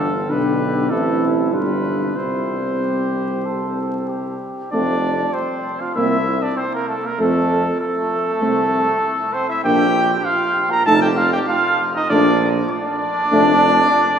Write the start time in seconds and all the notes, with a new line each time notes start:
Already playing: G1 D3 D4 G4 A4
0.29 B1 D3 D4 G4 B4
0.89 A1 E3 C4 E4 A4
1.52 G1 G3 D4 F4 B4
2.16 C2 G3 C4 E4 C5
2.81 G4
3.45 A4
4.08 G4
4.72 F1 A3 C4 D4 D5
5.33 C4 C5
5.81 F4 F5
5.95 C2 A#3 C4 E4 E5
6.42 D4 D5
6.57 C4 C5
6.73 A#3 A#4
6.88 A3 A4
7.04 A#3 A#4
7.19 F2 A3 C4 A4
7.80 A3 A4
8.41 C2 A3 C4
9.33 C4 C5
9.49 E4 E5
9.64 A#1 A#3 D4 G4 G5
10.25 F4 F5
10.71 A#4 A#5
10.86 F1 A3 D#4 A4 A5
11.02 G4 G5
11.17 F4 F5
11.33 G4 G5
11.47 F4 F5
11.95 D#4 D#5
12.09 A#1 A3 D4 D5
12.70 D4 D5
13.32 F1 A3 D4